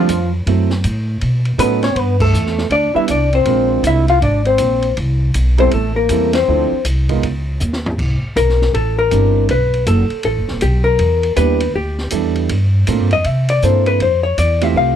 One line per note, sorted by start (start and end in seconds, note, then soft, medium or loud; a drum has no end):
0.00 0.29 F3 medium
0.00 0.31 F3 medium
0.00 0.31 F4 medium
0.09 0.45 F2 medium
0.09 hi-hat pedal medium
0.09 ride medium
0.47 0.83 F#2 medium
0.47 0.69 F#3 medium
0.47 0.68 A3 medium
0.47 0.69 C4 medium
0.47 0.69 E4 medium
0.47 0.69 A4 medium
0.47 ride medium
0.70 snare soft
0.84 1.21 A2 medium
0.84 hi-hat pedal soft
0.84 ride medium
1.21 1.58 B2 medium
1.21 ride medium
1.45 ride soft
1.58 1.95 A2 medium
1.58 1.80 F#3 medium
1.58 1.80 B3 medium
1.58 1.82 B3 medium
1.58 1.81 C#4 medium
1.58 1.80 D#4 medium
1.58 1.80 A4 medium
1.58 1.83 B4 medium
1.58 hi-hat pedal medium
1.58 ride medium
1.82 1.97 C#4 medium
1.82 1.99 C#5 medium
1.82 snare soft
1.82 ride soft
1.95 2.33 G2 medium
1.95 2.19 B3 medium
1.95 ride medium
1.99 2.21 B4 medium
2.20 2.68 A3 medium
2.20 2.69 A4 medium
2.20 kick medium
2.20 crash medium
2.33 2.69 E2 medium
2.33 hi-hat pedal medium
2.46 snare soft
2.58 snare soft
2.70 2.93 D2 medium
2.70 2.94 D4 medium
2.70 2.95 D5 medium
2.70 ride medium
2.94 3.08 G3 medium
2.94 3.08 B3 medium
2.94 3.08 D4 medium
2.94 3.08 E4 medium
2.94 3.08 B4 medium
2.94 3.09 E5 medium
2.94 muted upright bass stroke soft
3.08 3.45 C2 medium
3.08 3.31 D4 medium
3.08 3.34 D5 medium
3.08 hi-hat pedal medium
3.08 ride medium
3.33 3.81 C4 medium
3.33 3.82 C5 medium
3.33 ride soft
3.45 3.83 A#1 medium
3.45 4.04 G#3 medium
3.45 4.04 C4 medium
3.45 4.04 D4 medium
3.45 4.04 F4 medium
3.45 4.04 A#4 medium
3.45 ride medium
3.83 4.20 C2 medium
3.83 4.08 E4 medium
3.83 4.09 E5 medium
3.83 hi-hat pedal medium
3.83 ride medium
4.08 4.21 F4 medium
4.08 4.23 F5 loud
4.08 ride soft
4.21 4.58 G#1 medium
4.21 4.44 D4 medium
4.21 4.46 D5 medium
4.21 ride medium
4.45 4.94 C4 medium
4.45 4.94 C5 medium
4.45 ride soft
4.58 4.97 A#1 medium
4.58 hi-hat pedal medium
4.58 ride medium
4.82 ride soft
4.97 5.34 C2 medium
4.97 ride medium
5.34 5.72 B1 medium
5.34 hi-hat pedal medium
5.34 ride medium
5.58 5.71 G3 medium
5.58 5.71 B3 medium
5.58 5.71 C4 medium
5.58 5.72 C4 medium
5.58 5.71 E4 medium
5.58 5.71 A4 medium
5.58 5.73 C5 medium
5.58 ride soft
5.71 6.09 A1 medium
5.71 5.95 A3 medium
5.71 5.96 A4 medium
5.71 ride medium
5.95 6.31 A#3 medium
5.95 6.32 A#4 medium
6.09 6.47 E2 medium
6.09 6.32 G3 medium
6.09 6.32 B3 medium
6.09 6.32 C4 medium
6.09 6.32 E4 medium
6.09 6.33 A4 medium
6.09 hi-hat pedal medium
6.09 ride medium
6.33 6.82 C4 medium
6.33 6.82 C5 medium
6.33 snare medium
6.33 ride medium
6.48 6.70 D2 medium
6.48 6.70 F3 medium
6.48 6.69 C4 medium
6.48 6.70 D4 medium
6.48 6.70 E4 medium
6.48 6.70 A4 medium
6.72 muted upright bass stroke soft
6.85 7.22 C2 medium
6.85 hi-hat pedal medium
6.85 ride medium
7.09 7.22 G#3 medium
7.09 7.22 B3 medium
7.09 7.22 D#4 medium
7.09 7.22 F4 medium
7.09 7.22 A#4 medium
7.09 kick soft
7.09 ride soft
7.23 7.60 C#2 medium
7.23 ride medium
7.60 7.98 D#2 medium
7.60 hi-hat pedal medium
7.73 snare medium
7.86 floor tom medium
7.98 8.21 C2 medium
7.98 kick medium
7.98 crash medium
8.23 muted upright bass stroke soft
8.36 8.72 B1 medium
8.36 8.71 A#4 medium
8.36 hi-hat pedal medium
8.36 ride medium
8.49 snare soft
8.62 snare soft
8.73 9.10 A1 medium
8.73 8.97 A4 medium
8.73 ride medium
8.99 9.46 A#4 medium
9.10 9.48 G1 medium
9.10 9.48 G3 medium
9.10 9.49 C4 medium
9.10 9.49 D4 medium
9.10 9.49 E4 soft
9.10 9.49 G4 medium
9.10 hi-hat pedal soft
9.10 ride medium
9.49 9.85 B1 medium
9.49 9.85 B4 medium
9.49 ride medium
9.74 ride soft
9.87 10.09 F#1 medium
9.87 10.24 A4 medium
9.87 hi-hat pedal medium
9.87 ride medium
10.10 ride soft
10.23 10.38 A1 medium
10.23 10.60 A4 medium
10.23 ride medium
10.37 10.49 F#1 medium
10.48 10.61 D#1 medium
10.48 snare soft
10.61 10.99 B1 medium
10.61 10.85 G4 medium
10.61 hi-hat pedal medium
10.61 ride medium
10.84 11.32 A#4 medium
10.99 11.36 E2 medium
10.99 ride medium
11.23 ride soft
11.36 11.73 D#2 medium
11.36 11.58 G3 medium
11.36 11.58 B3 medium
11.36 11.58 D4 medium
11.36 11.58 E4 medium
11.36 11.58 G4 medium
11.36 11.72 B4 medium
11.36 hi-hat pedal medium
11.36 ride medium
11.60 ride medium
11.74 12.10 D2 medium
11.74 12.32 G4 medium
11.98 snare soft
12.11 12.48 E2 medium
12.11 12.49 G3 medium
12.11 12.50 B3 medium
12.11 12.50 D4 medium
12.11 12.50 E4 soft
12.11 12.50 A4 medium
12.11 hi-hat pedal medium
12.11 ride medium
12.36 ride soft
12.49 12.86 G2 medium
12.49 ride medium
12.87 13.00 A2 medium
12.87 13.09 A#3 medium
12.87 13.09 C4 medium
12.87 13.09 D4 medium
12.87 13.09 F4 medium
12.87 13.09 A4 medium
12.87 hi-hat pedal medium
12.87 ride medium
13.00 13.12 G2 medium
13.11 13.24 F2 medium
13.11 13.27 D#5 medium
13.11 ride soft
13.24 13.61 C3 medium
13.24 13.49 E5 medium
13.24 ride medium
13.49 13.64 D5 loud
13.49 ride medium
13.62 13.99 G2 medium
13.62 14.00 A#3 medium
13.62 14.00 C4 medium
13.62 14.00 D4 medium
13.62 14.01 E4 medium
13.62 14.00 A4 medium
13.62 13.86 C5 medium
13.62 hi-hat pedal medium
13.86 14.00 B4 medium
13.86 ride soft
14.00 14.36 F2 medium
14.00 14.23 C5 medium
14.00 ride medium
14.23 14.37 C#5 medium
14.38 14.74 E2 medium
14.38 14.63 D5 medium
14.38 hi-hat pedal medium
14.38 ride medium
14.61 14.96 A3 medium
14.61 14.96 C4 medium
14.61 14.96 E4 medium
14.61 14.96 F4 medium
14.61 14.96 G4 medium
14.61 14.75 E5 loud
14.61 ride medium
14.74 14.96 C2 medium
14.74 14.96 F5 medium